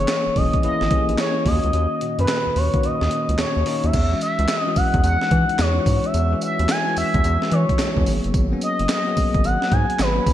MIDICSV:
0, 0, Header, 1, 5, 480
1, 0, Start_track
1, 0, Tempo, 550459
1, 1513, Time_signature, 4, 2, 24, 8
1, 9010, End_track
2, 0, Start_track
2, 0, Title_t, "Analog synth lead"
2, 0, Program_c, 0, 81
2, 0, Note_on_c, 0, 73, 110
2, 323, Note_on_c, 0, 75, 105
2, 336, Note_off_c, 0, 73, 0
2, 558, Note_off_c, 0, 75, 0
2, 565, Note_on_c, 0, 75, 102
2, 1006, Note_off_c, 0, 75, 0
2, 1047, Note_on_c, 0, 73, 87
2, 1286, Note_on_c, 0, 75, 99
2, 1299, Note_off_c, 0, 73, 0
2, 1915, Note_off_c, 0, 75, 0
2, 1923, Note_on_c, 0, 71, 87
2, 2248, Note_on_c, 0, 73, 90
2, 2261, Note_off_c, 0, 71, 0
2, 2486, Note_on_c, 0, 75, 90
2, 2499, Note_off_c, 0, 73, 0
2, 2959, Note_off_c, 0, 75, 0
2, 2964, Note_on_c, 0, 73, 81
2, 3357, Note_on_c, 0, 76, 95
2, 3370, Note_off_c, 0, 73, 0
2, 3678, Note_off_c, 0, 76, 0
2, 3682, Note_on_c, 0, 76, 95
2, 4005, Note_off_c, 0, 76, 0
2, 4005, Note_on_c, 0, 75, 95
2, 4161, Note_on_c, 0, 78, 99
2, 4174, Note_off_c, 0, 75, 0
2, 4397, Note_off_c, 0, 78, 0
2, 4404, Note_on_c, 0, 78, 104
2, 4885, Note_on_c, 0, 73, 94
2, 4898, Note_off_c, 0, 78, 0
2, 5280, Note_on_c, 0, 76, 108
2, 5293, Note_off_c, 0, 73, 0
2, 5599, Note_off_c, 0, 76, 0
2, 5607, Note_on_c, 0, 76, 97
2, 5847, Note_on_c, 0, 80, 108
2, 5860, Note_off_c, 0, 76, 0
2, 6080, Note_off_c, 0, 80, 0
2, 6085, Note_on_c, 0, 76, 112
2, 6566, Note_on_c, 0, 73, 96
2, 6579, Note_off_c, 0, 76, 0
2, 7040, Note_off_c, 0, 73, 0
2, 7526, Note_on_c, 0, 75, 87
2, 7743, Note_off_c, 0, 75, 0
2, 7766, Note_on_c, 0, 75, 99
2, 8242, Note_on_c, 0, 78, 98
2, 8256, Note_off_c, 0, 75, 0
2, 8483, Note_on_c, 0, 80, 96
2, 8496, Note_off_c, 0, 78, 0
2, 8724, Note_on_c, 0, 71, 93
2, 8738, Note_off_c, 0, 80, 0
2, 9010, Note_off_c, 0, 71, 0
2, 9010, End_track
3, 0, Start_track
3, 0, Title_t, "Tine electric piano"
3, 0, Program_c, 1, 4
3, 0, Control_c, 1, 64, 127
3, 0, Note_on_c, 1, 52, 81
3, 0, Note_on_c, 1, 58, 72
3, 0, Note_on_c, 1, 61, 74
3, 0, Note_on_c, 1, 68, 87
3, 286, Note_off_c, 1, 52, 0
3, 288, Note_off_c, 1, 58, 0
3, 289, Note_off_c, 1, 61, 0
3, 291, Note_off_c, 1, 68, 0
3, 312, Note_on_c, 1, 52, 76
3, 315, Note_on_c, 1, 58, 78
3, 319, Note_on_c, 1, 61, 76
3, 323, Note_on_c, 1, 68, 94
3, 535, Note_off_c, 1, 52, 0
3, 536, Note_off_c, 1, 58, 0
3, 538, Note_off_c, 1, 61, 0
3, 540, Note_off_c, 1, 68, 0
3, 553, Note_on_c, 1, 52, 84
3, 557, Note_on_c, 1, 58, 79
3, 560, Note_on_c, 1, 61, 76
3, 563, Note_on_c, 1, 64, 101
3, 775, Note_off_c, 1, 52, 0
3, 777, Note_off_c, 1, 58, 0
3, 778, Note_off_c, 1, 61, 0
3, 780, Note_off_c, 1, 64, 0
3, 792, Note_on_c, 1, 52, 79
3, 797, Note_on_c, 1, 58, 71
3, 799, Note_on_c, 1, 61, 76
3, 803, Note_on_c, 1, 67, 70
3, 860, Note_on_c, 1, 68, 87
3, 871, Note_off_c, 1, 67, 0
3, 1266, Note_off_c, 1, 58, 0
3, 1269, Note_off_c, 1, 61, 0
3, 1272, Note_on_c, 1, 51, 77
3, 1273, Note_off_c, 1, 52, 0
3, 1276, Note_on_c, 1, 58, 72
3, 1279, Note_on_c, 1, 61, 72
3, 1283, Note_on_c, 1, 65, 69
3, 1284, Control_c, 1, 64, 0
3, 1307, Note_off_c, 1, 68, 0
3, 1340, Note_on_c, 1, 66, 82
3, 1352, Note_off_c, 1, 65, 0
3, 1465, Control_c, 1, 64, 127
3, 1716, Note_off_c, 1, 51, 0
3, 1718, Note_off_c, 1, 58, 0
3, 1720, Note_off_c, 1, 61, 0
3, 1750, Note_off_c, 1, 66, 0
3, 1752, Note_on_c, 1, 51, 68
3, 1755, Note_on_c, 1, 46, 58
3, 1759, Note_on_c, 1, 61, 64
3, 1762, Note_on_c, 1, 66, 78
3, 2305, Note_off_c, 1, 51, 0
3, 2307, Note_off_c, 1, 46, 0
3, 2308, Note_off_c, 1, 61, 0
3, 2310, Note_off_c, 1, 66, 0
3, 2388, Note_on_c, 1, 51, 82
3, 2391, Note_on_c, 1, 58, 80
3, 2395, Note_on_c, 1, 61, 78
3, 2398, Note_on_c, 1, 66, 88
3, 3130, Note_off_c, 1, 51, 0
3, 3131, Note_off_c, 1, 58, 0
3, 3133, Note_off_c, 1, 61, 0
3, 3135, Note_off_c, 1, 66, 0
3, 3192, Note_on_c, 1, 51, 99
3, 3195, Note_on_c, 1, 58, 88
3, 3199, Note_on_c, 1, 61, 88
3, 3202, Note_on_c, 1, 63, 110
3, 3433, Note_off_c, 1, 51, 0
3, 3434, Note_off_c, 1, 58, 0
3, 3436, Note_off_c, 1, 61, 0
3, 3438, Note_off_c, 1, 63, 0
3, 3443, Control_c, 1, 64, 0
3, 3587, Note_on_c, 1, 52, 77
3, 3591, Note_on_c, 1, 56, 66
3, 3594, Note_on_c, 1, 61, 68
3, 3598, Note_on_c, 1, 66, 83
3, 3618, Control_c, 1, 64, 127
3, 4001, Note_off_c, 1, 52, 0
3, 4003, Note_off_c, 1, 56, 0
3, 4005, Note_off_c, 1, 61, 0
3, 4007, Note_off_c, 1, 66, 0
3, 4068, Note_on_c, 1, 52, 82
3, 4072, Note_on_c, 1, 56, 74
3, 4076, Note_on_c, 1, 61, 78
3, 4079, Note_on_c, 1, 66, 92
3, 4482, Note_off_c, 1, 52, 0
3, 4484, Note_off_c, 1, 56, 0
3, 4486, Note_off_c, 1, 61, 0
3, 4487, Note_off_c, 1, 66, 0
3, 4547, Note_on_c, 1, 52, 66
3, 4550, Note_on_c, 1, 56, 61
3, 4554, Note_on_c, 1, 61, 60
3, 4557, Note_on_c, 1, 63, 78
3, 4961, Note_off_c, 1, 52, 0
3, 4963, Note_off_c, 1, 56, 0
3, 4965, Note_off_c, 1, 61, 0
3, 4967, Note_off_c, 1, 63, 0
3, 5027, Note_on_c, 1, 52, 68
3, 5031, Note_on_c, 1, 56, 67
3, 5034, Note_on_c, 1, 61, 71
3, 5038, Note_on_c, 1, 66, 81
3, 5441, Note_off_c, 1, 52, 0
3, 5443, Note_off_c, 1, 56, 0
3, 5445, Note_off_c, 1, 61, 0
3, 5447, Note_off_c, 1, 66, 0
3, 5507, Note_on_c, 1, 52, 82
3, 5511, Note_on_c, 1, 56, 69
3, 5515, Note_on_c, 1, 61, 77
3, 5518, Note_on_c, 1, 66, 93
3, 5922, Note_off_c, 1, 52, 0
3, 5923, Note_off_c, 1, 56, 0
3, 5925, Note_off_c, 1, 61, 0
3, 5927, Note_off_c, 1, 66, 0
3, 5988, Note_on_c, 1, 52, 82
3, 5992, Note_on_c, 1, 56, 74
3, 5995, Note_on_c, 1, 61, 77
3, 5998, Note_on_c, 1, 66, 95
3, 6402, Note_off_c, 1, 52, 0
3, 6404, Note_off_c, 1, 56, 0
3, 6406, Note_off_c, 1, 61, 0
3, 6407, Note_off_c, 1, 66, 0
3, 6466, Note_on_c, 1, 52, 69
3, 6469, Note_on_c, 1, 56, 64
3, 6473, Note_on_c, 1, 61, 60
3, 6477, Note_on_c, 1, 66, 71
3, 6881, Note_off_c, 1, 52, 0
3, 6883, Note_off_c, 1, 56, 0
3, 6885, Note_off_c, 1, 61, 0
3, 6886, Note_off_c, 1, 66, 0
3, 6947, Note_on_c, 1, 52, 85
3, 6950, Note_on_c, 1, 56, 76
3, 6955, Note_on_c, 1, 61, 79
3, 6958, Note_on_c, 1, 66, 87
3, 7031, Note_on_c, 1, 54, 81
3, 7033, Note_off_c, 1, 52, 0
3, 7034, Note_off_c, 1, 56, 0
3, 7035, Note_on_c, 1, 58, 72
3, 7036, Note_off_c, 1, 61, 0
3, 7038, Note_off_c, 1, 66, 0
3, 7039, Note_on_c, 1, 59, 72
3, 7042, Note_on_c, 1, 68, 88
3, 7044, Control_c, 1, 64, 0
3, 7215, Control_c, 1, 64, 127
3, 7378, Note_off_c, 1, 54, 0
3, 7379, Note_off_c, 1, 58, 0
3, 7381, Note_off_c, 1, 59, 0
3, 7383, Note_off_c, 1, 68, 0
3, 7427, Note_on_c, 1, 54, 75
3, 7430, Note_on_c, 1, 58, 71
3, 7434, Note_on_c, 1, 59, 73
3, 7437, Note_on_c, 1, 61, 91
3, 7841, Note_off_c, 1, 54, 0
3, 7843, Note_off_c, 1, 58, 0
3, 7845, Note_off_c, 1, 59, 0
3, 7846, Note_off_c, 1, 61, 0
3, 7906, Note_on_c, 1, 54, 81
3, 7909, Note_on_c, 1, 58, 77
3, 7913, Note_on_c, 1, 59, 78
3, 7917, Note_on_c, 1, 68, 93
3, 8321, Note_off_c, 1, 54, 0
3, 8322, Note_off_c, 1, 58, 0
3, 8324, Note_off_c, 1, 59, 0
3, 8326, Note_off_c, 1, 68, 0
3, 8389, Note_on_c, 1, 54, 69
3, 8391, Note_on_c, 1, 58, 58
3, 8395, Note_on_c, 1, 59, 64
3, 8398, Note_on_c, 1, 68, 75
3, 8802, Note_off_c, 1, 54, 0
3, 8804, Note_off_c, 1, 58, 0
3, 8806, Note_off_c, 1, 59, 0
3, 8807, Note_off_c, 1, 68, 0
3, 8868, Note_on_c, 1, 54, 69
3, 8871, Note_on_c, 1, 58, 67
3, 8874, Note_on_c, 1, 59, 66
3, 8878, Note_on_c, 1, 61, 85
3, 9010, Note_off_c, 1, 54, 0
3, 9010, Note_off_c, 1, 58, 0
3, 9010, Note_off_c, 1, 59, 0
3, 9010, Note_off_c, 1, 61, 0
3, 9010, End_track
4, 0, Start_track
4, 0, Title_t, "Analog synth bass"
4, 0, Program_c, 2, 38
4, 230, Note_on_c, 2, 28, 50
4, 263, Note_off_c, 2, 28, 0
4, 315, Note_on_c, 2, 28, 86
4, 433, Note_off_c, 2, 28, 0
4, 556, Note_on_c, 2, 32, 54
4, 617, Note_off_c, 2, 32, 0
4, 709, Note_on_c, 2, 32, 101
4, 774, Note_off_c, 2, 32, 0
4, 951, Note_on_c, 2, 34, 94
4, 1014, Note_off_c, 2, 34, 0
4, 1271, Note_on_c, 2, 39, 105
4, 1390, Note_off_c, 2, 39, 0
4, 1429, Note_on_c, 2, 37, 93
4, 1493, Note_off_c, 2, 37, 0
4, 1513, Note_on_c, 2, 39, 101
4, 1631, Note_off_c, 2, 39, 0
4, 1908, Note_on_c, 2, 42, 94
4, 1973, Note_off_c, 2, 42, 0
4, 2149, Note_on_c, 2, 39, 51
4, 2183, Note_off_c, 2, 39, 0
4, 2233, Note_on_c, 2, 39, 86
4, 2351, Note_off_c, 2, 39, 0
4, 2474, Note_on_c, 2, 39, 50
4, 2536, Note_off_c, 2, 39, 0
4, 2629, Note_on_c, 2, 39, 90
4, 2693, Note_off_c, 2, 39, 0
4, 2868, Note_on_c, 2, 37, 99
4, 2933, Note_off_c, 2, 37, 0
4, 2953, Note_on_c, 2, 39, 47
4, 3015, Note_off_c, 2, 39, 0
4, 3109, Note_on_c, 2, 39, 100
4, 3174, Note_off_c, 2, 39, 0
4, 3349, Note_on_c, 2, 39, 89
4, 3413, Note_off_c, 2, 39, 0
4, 3433, Note_on_c, 2, 40, 98
4, 3616, Note_off_c, 2, 40, 0
4, 3828, Note_on_c, 2, 37, 98
4, 3893, Note_off_c, 2, 37, 0
4, 4156, Note_on_c, 2, 40, 42
4, 4217, Note_off_c, 2, 40, 0
4, 4309, Note_on_c, 2, 40, 89
4, 4373, Note_off_c, 2, 40, 0
4, 4392, Note_on_c, 2, 40, 105
4, 4510, Note_off_c, 2, 40, 0
4, 4635, Note_on_c, 2, 52, 94
4, 4752, Note_off_c, 2, 52, 0
4, 4875, Note_on_c, 2, 40, 110
4, 5056, Note_off_c, 2, 40, 0
4, 5111, Note_on_c, 2, 44, 92
4, 5230, Note_off_c, 2, 44, 0
4, 5356, Note_on_c, 2, 40, 103
4, 5537, Note_off_c, 2, 40, 0
4, 5751, Note_on_c, 2, 39, 96
4, 5814, Note_off_c, 2, 39, 0
4, 6077, Note_on_c, 2, 40, 45
4, 6138, Note_off_c, 2, 40, 0
4, 6230, Note_on_c, 2, 40, 89
4, 6294, Note_off_c, 2, 40, 0
4, 6317, Note_on_c, 2, 40, 93
4, 6434, Note_off_c, 2, 40, 0
4, 6557, Note_on_c, 2, 52, 95
4, 6673, Note_off_c, 2, 52, 0
4, 6947, Note_on_c, 2, 40, 89
4, 7012, Note_off_c, 2, 40, 0
4, 7036, Note_on_c, 2, 32, 109
4, 7153, Note_off_c, 2, 32, 0
4, 7192, Note_on_c, 2, 30, 85
4, 7255, Note_off_c, 2, 30, 0
4, 7274, Note_on_c, 2, 32, 107
4, 7456, Note_off_c, 2, 32, 0
4, 7671, Note_on_c, 2, 30, 89
4, 7734, Note_off_c, 2, 30, 0
4, 7997, Note_on_c, 2, 32, 45
4, 8058, Note_off_c, 2, 32, 0
4, 8150, Note_on_c, 2, 32, 90
4, 8214, Note_off_c, 2, 32, 0
4, 8234, Note_on_c, 2, 32, 103
4, 8352, Note_off_c, 2, 32, 0
4, 8475, Note_on_c, 2, 44, 88
4, 8592, Note_off_c, 2, 44, 0
4, 8715, Note_on_c, 2, 32, 99
4, 8897, Note_off_c, 2, 32, 0
4, 8952, Note_on_c, 2, 35, 104
4, 9010, Note_off_c, 2, 35, 0
4, 9010, End_track
5, 0, Start_track
5, 0, Title_t, "Drums"
5, 69, Note_on_c, 9, 42, 75
5, 70, Note_on_c, 9, 39, 95
5, 71, Note_on_c, 9, 38, 126
5, 156, Note_off_c, 9, 42, 0
5, 158, Note_off_c, 9, 38, 0
5, 158, Note_off_c, 9, 39, 0
5, 313, Note_on_c, 9, 46, 65
5, 315, Note_on_c, 9, 36, 81
5, 400, Note_off_c, 9, 46, 0
5, 402, Note_off_c, 9, 36, 0
5, 465, Note_on_c, 9, 42, 52
5, 468, Note_on_c, 9, 36, 98
5, 552, Note_off_c, 9, 42, 0
5, 552, Note_on_c, 9, 42, 66
5, 555, Note_off_c, 9, 36, 0
5, 639, Note_off_c, 9, 42, 0
5, 707, Note_on_c, 9, 38, 61
5, 790, Note_on_c, 9, 42, 73
5, 793, Note_on_c, 9, 36, 113
5, 794, Note_off_c, 9, 38, 0
5, 877, Note_off_c, 9, 42, 0
5, 880, Note_off_c, 9, 36, 0
5, 949, Note_on_c, 9, 42, 55
5, 1031, Note_on_c, 9, 38, 121
5, 1031, Note_on_c, 9, 39, 94
5, 1033, Note_off_c, 9, 42, 0
5, 1033, Note_on_c, 9, 42, 78
5, 1118, Note_off_c, 9, 38, 0
5, 1118, Note_off_c, 9, 39, 0
5, 1120, Note_off_c, 9, 42, 0
5, 1270, Note_on_c, 9, 36, 86
5, 1270, Note_on_c, 9, 46, 75
5, 1357, Note_off_c, 9, 36, 0
5, 1357, Note_off_c, 9, 46, 0
5, 1426, Note_on_c, 9, 42, 48
5, 1511, Note_off_c, 9, 42, 0
5, 1511, Note_on_c, 9, 42, 59
5, 1598, Note_off_c, 9, 42, 0
5, 1754, Note_on_c, 9, 42, 67
5, 1841, Note_off_c, 9, 42, 0
5, 1907, Note_on_c, 9, 42, 49
5, 1989, Note_off_c, 9, 42, 0
5, 1989, Note_on_c, 9, 42, 72
5, 1990, Note_on_c, 9, 38, 116
5, 1990, Note_on_c, 9, 39, 93
5, 2076, Note_off_c, 9, 42, 0
5, 2077, Note_off_c, 9, 38, 0
5, 2077, Note_off_c, 9, 39, 0
5, 2232, Note_on_c, 9, 46, 67
5, 2320, Note_off_c, 9, 46, 0
5, 2386, Note_on_c, 9, 42, 53
5, 2388, Note_on_c, 9, 36, 95
5, 2471, Note_off_c, 9, 42, 0
5, 2471, Note_on_c, 9, 42, 69
5, 2475, Note_off_c, 9, 36, 0
5, 2559, Note_off_c, 9, 42, 0
5, 2628, Note_on_c, 9, 38, 68
5, 2711, Note_on_c, 9, 42, 75
5, 2715, Note_off_c, 9, 38, 0
5, 2798, Note_off_c, 9, 42, 0
5, 2869, Note_on_c, 9, 42, 55
5, 2952, Note_on_c, 9, 38, 115
5, 2952, Note_on_c, 9, 39, 97
5, 2953, Note_off_c, 9, 42, 0
5, 2953, Note_on_c, 9, 42, 77
5, 3039, Note_off_c, 9, 38, 0
5, 3039, Note_off_c, 9, 39, 0
5, 3041, Note_off_c, 9, 42, 0
5, 3190, Note_on_c, 9, 46, 76
5, 3277, Note_off_c, 9, 46, 0
5, 3345, Note_on_c, 9, 42, 49
5, 3431, Note_off_c, 9, 42, 0
5, 3431, Note_on_c, 9, 42, 57
5, 3431, Note_on_c, 9, 49, 98
5, 3431, Note_on_c, 9, 54, 71
5, 3432, Note_on_c, 9, 36, 112
5, 3518, Note_off_c, 9, 42, 0
5, 3518, Note_off_c, 9, 49, 0
5, 3518, Note_off_c, 9, 54, 0
5, 3519, Note_off_c, 9, 36, 0
5, 3672, Note_on_c, 9, 54, 66
5, 3675, Note_on_c, 9, 42, 67
5, 3759, Note_off_c, 9, 54, 0
5, 3762, Note_off_c, 9, 42, 0
5, 3826, Note_on_c, 9, 42, 53
5, 3909, Note_off_c, 9, 42, 0
5, 3909, Note_on_c, 9, 42, 76
5, 3910, Note_on_c, 9, 38, 119
5, 3910, Note_on_c, 9, 39, 100
5, 3910, Note_on_c, 9, 54, 97
5, 3996, Note_off_c, 9, 42, 0
5, 3997, Note_off_c, 9, 38, 0
5, 3997, Note_off_c, 9, 39, 0
5, 3998, Note_off_c, 9, 54, 0
5, 4151, Note_on_c, 9, 54, 67
5, 4153, Note_on_c, 9, 46, 68
5, 4155, Note_on_c, 9, 36, 78
5, 4238, Note_off_c, 9, 54, 0
5, 4240, Note_off_c, 9, 46, 0
5, 4242, Note_off_c, 9, 36, 0
5, 4306, Note_on_c, 9, 42, 52
5, 4308, Note_on_c, 9, 36, 112
5, 4391, Note_off_c, 9, 42, 0
5, 4391, Note_on_c, 9, 42, 74
5, 4394, Note_on_c, 9, 54, 65
5, 4395, Note_off_c, 9, 36, 0
5, 4479, Note_off_c, 9, 42, 0
5, 4481, Note_off_c, 9, 54, 0
5, 4547, Note_on_c, 9, 38, 64
5, 4631, Note_on_c, 9, 42, 73
5, 4634, Note_off_c, 9, 38, 0
5, 4634, Note_on_c, 9, 36, 108
5, 4718, Note_off_c, 9, 42, 0
5, 4721, Note_off_c, 9, 36, 0
5, 4790, Note_on_c, 9, 42, 60
5, 4873, Note_on_c, 9, 38, 124
5, 4873, Note_on_c, 9, 39, 98
5, 4874, Note_off_c, 9, 42, 0
5, 4874, Note_on_c, 9, 42, 77
5, 4875, Note_on_c, 9, 54, 96
5, 4960, Note_off_c, 9, 38, 0
5, 4960, Note_off_c, 9, 39, 0
5, 4962, Note_off_c, 9, 42, 0
5, 4963, Note_off_c, 9, 54, 0
5, 5111, Note_on_c, 9, 36, 91
5, 5112, Note_on_c, 9, 46, 70
5, 5112, Note_on_c, 9, 54, 66
5, 5198, Note_off_c, 9, 36, 0
5, 5199, Note_off_c, 9, 46, 0
5, 5200, Note_off_c, 9, 54, 0
5, 5267, Note_on_c, 9, 42, 49
5, 5354, Note_off_c, 9, 42, 0
5, 5354, Note_on_c, 9, 42, 61
5, 5354, Note_on_c, 9, 54, 72
5, 5441, Note_off_c, 9, 42, 0
5, 5441, Note_off_c, 9, 54, 0
5, 5593, Note_on_c, 9, 54, 71
5, 5596, Note_on_c, 9, 42, 65
5, 5680, Note_off_c, 9, 54, 0
5, 5683, Note_off_c, 9, 42, 0
5, 5750, Note_on_c, 9, 42, 55
5, 5831, Note_off_c, 9, 42, 0
5, 5831, Note_on_c, 9, 42, 72
5, 5832, Note_on_c, 9, 38, 126
5, 5832, Note_on_c, 9, 39, 101
5, 5833, Note_on_c, 9, 54, 104
5, 5918, Note_off_c, 9, 42, 0
5, 5919, Note_off_c, 9, 38, 0
5, 5919, Note_off_c, 9, 39, 0
5, 5920, Note_off_c, 9, 54, 0
5, 6073, Note_on_c, 9, 54, 66
5, 6075, Note_on_c, 9, 46, 67
5, 6160, Note_off_c, 9, 54, 0
5, 6162, Note_off_c, 9, 46, 0
5, 6228, Note_on_c, 9, 42, 55
5, 6229, Note_on_c, 9, 36, 103
5, 6314, Note_off_c, 9, 42, 0
5, 6314, Note_on_c, 9, 42, 70
5, 6317, Note_off_c, 9, 36, 0
5, 6317, Note_on_c, 9, 54, 69
5, 6401, Note_off_c, 9, 42, 0
5, 6404, Note_off_c, 9, 54, 0
5, 6470, Note_on_c, 9, 38, 65
5, 6553, Note_on_c, 9, 42, 76
5, 6558, Note_off_c, 9, 38, 0
5, 6640, Note_off_c, 9, 42, 0
5, 6708, Note_on_c, 9, 36, 99
5, 6710, Note_on_c, 9, 42, 58
5, 6792, Note_on_c, 9, 38, 122
5, 6792, Note_on_c, 9, 39, 98
5, 6793, Note_off_c, 9, 42, 0
5, 6793, Note_on_c, 9, 42, 80
5, 6795, Note_off_c, 9, 36, 0
5, 6795, Note_on_c, 9, 54, 91
5, 6879, Note_off_c, 9, 38, 0
5, 6879, Note_off_c, 9, 39, 0
5, 6881, Note_off_c, 9, 42, 0
5, 6882, Note_off_c, 9, 54, 0
5, 6947, Note_on_c, 9, 36, 94
5, 7031, Note_on_c, 9, 46, 71
5, 7032, Note_on_c, 9, 54, 65
5, 7034, Note_off_c, 9, 36, 0
5, 7119, Note_off_c, 9, 46, 0
5, 7119, Note_off_c, 9, 54, 0
5, 7187, Note_on_c, 9, 42, 46
5, 7273, Note_off_c, 9, 42, 0
5, 7273, Note_on_c, 9, 36, 120
5, 7273, Note_on_c, 9, 42, 58
5, 7273, Note_on_c, 9, 54, 69
5, 7360, Note_off_c, 9, 36, 0
5, 7360, Note_off_c, 9, 42, 0
5, 7360, Note_off_c, 9, 54, 0
5, 7511, Note_on_c, 9, 54, 68
5, 7514, Note_on_c, 9, 42, 68
5, 7598, Note_off_c, 9, 54, 0
5, 7601, Note_off_c, 9, 42, 0
5, 7668, Note_on_c, 9, 42, 53
5, 7751, Note_off_c, 9, 42, 0
5, 7751, Note_on_c, 9, 42, 83
5, 7752, Note_on_c, 9, 38, 120
5, 7752, Note_on_c, 9, 39, 92
5, 7752, Note_on_c, 9, 54, 100
5, 7838, Note_off_c, 9, 42, 0
5, 7839, Note_off_c, 9, 38, 0
5, 7839, Note_off_c, 9, 39, 0
5, 7839, Note_off_c, 9, 54, 0
5, 7994, Note_on_c, 9, 54, 67
5, 7996, Note_on_c, 9, 36, 86
5, 7996, Note_on_c, 9, 46, 70
5, 8081, Note_off_c, 9, 54, 0
5, 8083, Note_off_c, 9, 36, 0
5, 8083, Note_off_c, 9, 46, 0
5, 8148, Note_on_c, 9, 42, 50
5, 8149, Note_on_c, 9, 36, 109
5, 8233, Note_off_c, 9, 42, 0
5, 8233, Note_on_c, 9, 42, 71
5, 8236, Note_off_c, 9, 36, 0
5, 8236, Note_on_c, 9, 54, 69
5, 8320, Note_off_c, 9, 42, 0
5, 8323, Note_off_c, 9, 54, 0
5, 8390, Note_on_c, 9, 38, 70
5, 8472, Note_on_c, 9, 42, 71
5, 8474, Note_on_c, 9, 36, 107
5, 8477, Note_off_c, 9, 38, 0
5, 8560, Note_off_c, 9, 42, 0
5, 8561, Note_off_c, 9, 36, 0
5, 8631, Note_on_c, 9, 42, 62
5, 8713, Note_on_c, 9, 39, 95
5, 8714, Note_on_c, 9, 38, 122
5, 8715, Note_off_c, 9, 42, 0
5, 8715, Note_on_c, 9, 42, 74
5, 8716, Note_on_c, 9, 54, 96
5, 8801, Note_off_c, 9, 38, 0
5, 8801, Note_off_c, 9, 39, 0
5, 8802, Note_off_c, 9, 42, 0
5, 8803, Note_off_c, 9, 54, 0
5, 8951, Note_on_c, 9, 36, 98
5, 8953, Note_on_c, 9, 46, 69
5, 8953, Note_on_c, 9, 54, 67
5, 9010, Note_off_c, 9, 36, 0
5, 9010, Note_off_c, 9, 46, 0
5, 9010, Note_off_c, 9, 54, 0
5, 9010, End_track
0, 0, End_of_file